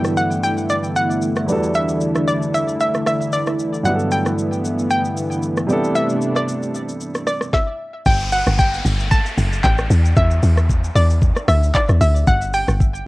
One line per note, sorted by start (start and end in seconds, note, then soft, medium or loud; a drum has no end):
0.00 1.44 G2 medium
0.00 5.65 D3 medium
0.00 3.81 E3 medium
0.00 1.44 F#3 medium
0.00 5.65 A3 medium
0.00 1.44 B3 medium
0.00 1.45 B3 medium
0.00 1.45 D4 medium
0.00 1.46 E4 medium
0.00 5.65 E4 medium
0.00 1.47 A4 medium
0.00 0.15 G5 loud
0.05 cross-stick medium
0.05 shaker medium
0.17 0.44 F#5 loud
0.17 shaker medium
0.31 shaker soft
0.44 0.68 G5 loud
0.44 shaker medium
0.58 shaker medium
0.70 0.97 D5 medium
0.70 shaker medium
0.84 shaker soft
0.96 1.71 F#5 loud
0.96 shaker medium
1.11 shaker soft
1.22 shaker medium
1.36 cross-stick medium
1.36 shaker soft
1.46 3.54 E2 medium
1.46 3.54 G3 medium
1.46 3.55 B3 medium
1.46 3.83 D4 medium
1.46 3.56 D4 medium
1.46 shaker medium
1.51 3.56 F#4 medium
1.51 3.57 A4 medium
1.63 shaker soft
1.75 2.24 E5 loud
1.75 shaker medium
1.89 shaker medium
2.01 shaker medium
2.15 cross-stick medium
2.15 shaker medium
2.28 2.54 D5 medium
2.28 shaker medium
2.42 shaker soft
2.54 2.66 E5 medium
2.54 shaker medium
2.68 shaker medium
2.80 3.06 E5 medium
2.80 shaker medium
2.94 cross-stick medium
2.94 shaker soft
3.06 3.34 E5 medium
3.06 cross-stick medium
3.06 shaker medium
3.21 shaker medium
3.32 3.87 D5 medium
3.32 shaker medium
3.46 cross-stick medium
3.46 shaker soft
3.59 shaker medium
3.74 shaker medium
3.83 5.64 G2 medium
3.83 7.50 E3 medium
3.83 5.65 F#3 medium
3.83 7.50 B3 medium
3.83 5.66 B3 medium
3.83 5.66 D4 medium
3.83 4.12 F#5 loud
3.83 shaker medium
3.88 5.67 E4 medium
3.88 3.94 G4 medium
3.95 5.71 A4 medium
3.95 shaker medium
4.11 4.60 G5 medium
4.11 shaker medium
4.26 cross-stick medium
4.26 shaker medium
4.38 shaker medium
4.53 shaker soft
4.65 shaker medium
4.79 shaker medium
4.91 5.99 G5 loud
4.91 shaker medium
5.05 shaker soft
5.17 shaker medium
5.32 shaker medium
5.43 shaker medium
5.57 cross-stick medium
5.57 shaker soft
5.67 7.48 C3 medium
5.67 7.52 C3 medium
5.67 7.49 G3 medium
5.67 7.52 A3 medium
5.67 7.50 B3 medium
5.67 7.52 D4 medium
5.67 7.50 D4 medium
5.67 shaker medium
5.72 7.51 E4 medium
5.72 7.52 A4 medium
5.84 shaker soft
5.95 6.38 E5 loud
5.95 shaker medium
6.10 shaker medium
6.22 shaker medium
6.36 7.26 D5 medium
6.36 cross-stick medium
6.36 shaker medium
6.49 shaker medium
6.63 shaker soft
6.75 shaker medium
6.89 shaker medium
7.01 shaker medium
7.15 cross-stick medium
7.15 shaker soft
7.27 7.54 D5 medium
7.27 cross-stick medium
7.27 shaker medium
7.41 cross-stick medium
7.41 shaker soft
7.53 8.08 E5 medium
7.53 kick loud
7.53 snare medium
8.06 8.43 G1 loud
8.06 8.31 G5 loud
8.06 kick loud
8.06 crash loud
8.06 downlifter medium
8.06 shaker medium
8.20 shaker medium
8.32 8.57 F#5 loud
8.32 open hi-hat soft
8.32 shaker medium
8.47 8.81 G1 medium
8.47 cross-stick medium
8.47 shaker medium
8.59 9.08 G5 loud
8.59 kick loud
8.59 shaker medium
8.74 shaker soft
8.85 9.21 G1 loud
8.85 open hi-hat medium
8.85 shaker loud
9.00 shaker medium
9.11 9.60 A5 loud
9.11 kick loud
9.11 shaker medium
9.26 shaker medium
9.38 9.61 F#1 loud
9.38 open hi-hat medium
9.38 shaker medium
9.53 shaker medium
9.64 9.88 A1 loud
9.64 10.18 G5 loud
9.64 kick loud
9.64 clap loud
9.64 shaker medium
9.78 cross-stick medium
9.78 shaker soft
9.90 10.14 E2 loud
9.90 open hi-hat medium
9.90 shaker medium
10.05 shaker medium
10.17 10.40 E2 loud
10.17 10.98 E5 loud
10.17 kick loud
10.17 shaker medium
10.31 shaker medium
10.43 10.90 E2 loud
10.43 open hi-hat medium
10.43 shaker medium
10.57 cross-stick medium
10.57 shaker medium
10.70 kick loud
10.70 shaker medium
10.84 shaker medium
10.95 11.32 E2 medium
10.95 11.45 D5 medium
10.95 open hi-hat medium
10.95 shaker loud
11.10 shaker medium
11.22 kick loud
11.22 shaker medium
11.36 cross-stick medium
11.36 shaker medium
11.48 11.72 D2 loud
11.48 11.75 E5 medium
11.48 cross-stick loud
11.48 open hi-hat medium
11.48 shaker medium
11.63 shaker medium
11.74 12.02 D5 medium
11.74 kick loud
11.74 clap loud
11.74 shaker medium
11.89 12.00 E2 medium
11.89 cross-stick medium
11.89 shaker soft
12.01 12.24 D2 loud
12.01 12.25 E5 medium
12.01 open hi-hat medium
12.01 shaker medium
12.16 shaker medium
12.27 12.64 G1 loud
12.27 12.54 F#5 loud
12.27 kick loud
12.27 shaker medium
12.41 shaker medium
12.53 13.03 G5 medium
12.53 open hi-hat medium
12.53 shaker medium
12.68 13.02 G1 medium
12.68 cross-stick medium
12.68 shaker medium
12.80 kick loud
12.80 shaker medium
12.95 shaker medium